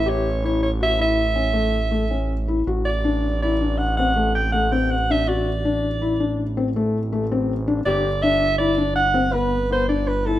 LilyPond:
<<
  \new Staff \with { instrumentName = "Soprano saxophone" } { \time 7/4 \key d \mixolydian \tempo 4 = 162 cis''4 cis''8 cis''8 e''8 e''1 r8 | r8 d''4. d''4 fis''8 fis''4 g''8 fis''8 g''8 fis''8 e''8 | d''2. r1 | d''4 e''4 d''4 fis''4 b'4 c''8 d''8 b'8 a'8 | }
  \new Staff \with { instrumentName = "Felt piano" } { \time 7/4 \key d \mixolydian g'4 e'4 fis'8 e'4 cis'8 a4 a8 cis'4 e'8 | fis'4 d'4 e'8 d'4 c'8 a4 a8 c'4 d'8 | fis'4 d'4 e'8 d'4 c'8 a4 a8 c'4 d'8 | g'4 d'4 e'8 d'4 c'8 b4 b8 d'4 e'8 | }
  \new Staff \with { instrumentName = "Analog synth bass" } { \clef bass \time 7/4 \key d \mixolydian a,,1.~ a,,4 | a,,1.~ a,,4~ | a,,1.~ a,,4 | g,,1.~ g,,4 | }
>>